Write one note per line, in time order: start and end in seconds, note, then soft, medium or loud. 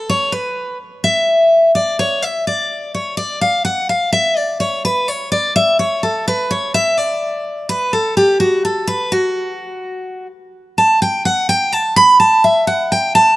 0.10 0.32 C#5 loud
0.32 0.76 B4 medium
1.04 1.71 E5 loud
1.75 1.99 D5 medium
1.99 2.22 C#5 medium
2.22 2.46 E5 medium
2.47 2.91 D5 medium
2.95 3.17 C#5 medium
3.17 3.41 D5 medium
3.41 3.64 F5 loud
3.65 3.88 F#5 loud
3.89 4.12 F5 medium
4.13 4.37 E5 loud
4.37 4.59 D5 medium
4.60 4.84 C#5 medium
4.85 5.08 B4 loud
5.08 5.31 C#5 medium
5.32 5.54 D5 medium
5.56 5.79 E5 loud
5.79 6.02 C#5 medium
6.03 6.26 A4 medium
6.28 6.50 B4 loud
6.51 6.74 C#5 medium
6.74 6.98 E5 loud
6.98 7.69 D5 medium
7.69 7.92 B4 loud
7.93 8.16 A4 medium
8.17 8.39 G4 medium
8.40 8.64 F#4 medium
8.65 8.87 A4 medium
8.87 9.11 B4 loud
9.12 10.26 F#4 loud
10.78 11.01 A5 medium
11.02 11.24 G5 medium
11.25 11.48 F#5 medium
11.49 11.72 G5 loud
11.72 11.96 A5 medium
11.96 12.19 B5 loud
12.20 12.43 A5 medium
12.44 12.67 E5 loud
12.67 12.91 F#5 medium
12.92 13.14 G5 medium
13.15 13.36 A5 loud